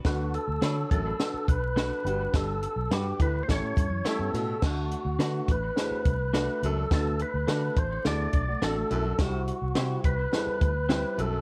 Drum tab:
CC |--------|--------|x-------|--------|
HH |xxxxxxxx|xxxxxxxx|-xxxxxxx|xxxxxxxx|
SD |o-o-o-o-|o-o-o-oo|o-o-o-o-|o-o-o-o-|
BD |o--o-o--|o--ooo--|o--o-o--|o--o-o--|

CC |--------|
HH |xxxxxxxx|
SD |o-o-o-o-|
BD |o--o-o--|